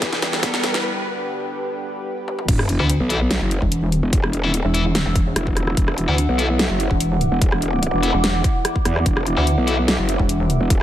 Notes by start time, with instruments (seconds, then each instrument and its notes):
Already playing: analog synth pad E3 G3 B3 G4 B4, ambient pad E4 B4 G5, riser
0.02 kick, snare, closed hi-hat
0.13 snare
0.22 snare, closed hi-hat
0.33 snare
0.43 cello B3, kick, snare, closed hi-hat
0.54 snare
0.64 snare, closed hi-hat
0.74 snare
0.84 analog synth pad D3
2.28 high tom
2.39 mid tom
2.48 wobble bass E1, analog synth pad E3 B3 E4, ambient pad E4, kick, closed hi-hat, crash, sub drop
2.59 ambient pad B4, cross-stick
2.69 ambient pad F#5, closed hi-hat
2.79 wobble bass D2, distorted electric guitar E3 B3 E4
2.90 closed hi-hat
3.00 wobble bass B1
3.10 distorted electric guitar E3 B3 E4, ambient pad E6, closed hi-hat
3.31 snare, closed hi-hat
3.41 wobble bass F#1
3.51 closed hi-hat
3.62 wobble bass E1, kick
3.72 closed hi-hat
3.92 closed hi-hat
4.03 wobble bass E1
4.13 kick, closed hi-hat
4.24 cross-stick
4.33 closed hi-hat
4.44 wobble bass D#1, distorted electric guitar E3 B3 E4
4.54 closed hi-hat
4.65 wobble bass E1
4.74 distorted electric guitar E3 B3 E4, closed hi-hat
4.95 snare, closed hi-hat
5.06 wobble bass E1
5.16 kick, closed hi-hat
5.36 wobble bass E1, cross-stick, closed hi-hat
5.47 kick
5.57 cross-stick, closed hi-hat
5.67 cross-stick
5.77 wobble bass E1, analog synth pad A4, kick, closed hi-hat
5.88 cross-stick
5.98 closed hi-hat
6.08 wobble bass D2, distorted electric guitar E3 B3 E4
6.18 closed hi-hat
6.29 wobble bass B1
6.38 distorted electric guitar E3 B3 E4, ambient pad D6, closed hi-hat
6.59 snare, closed hi-hat
6.70 wobble bass F#1
6.80 closed hi-hat
6.91 wobble bass E1, kick
7.00 closed hi-hat
7.21 closed hi-hat
7.32 wobble bass E1
7.42 kick, closed hi-hat
7.52 cross-stick
7.62 closed hi-hat
7.83 closed hi-hat
7.93 wobble bass E1
8.03 distorted electric guitar E3 B3 E4, closed hi-hat
8.14 wobble bass E1
8.24 snare, closed hi-hat
8.44 kick, closed hi-hat
8.65 cross-stick, closed hi-hat
8.76 kick
8.85 wobble bass E2, cross-stick, closed hi-hat
8.96 cross-stick
9.06 wobble bass E1, analog synth pad E4, kick, closed hi-hat
9.17 cross-stick
9.27 closed hi-hat
9.37 wobble bass D2, distorted electric guitar E3 B3 E4
9.47 closed hi-hat
9.58 wobble bass B1
9.67 distorted electric guitar E3 B3 E4, ambient pad E6, closed hi-hat
9.88 snare, closed hi-hat
9.99 wobble bass F#1
10.09 closed hi-hat
10.19 wobble bass E1, kick
10.29 closed hi-hat
10.50 closed hi-hat
10.61 wobble bass E1
10.70 kick, closed hi-hat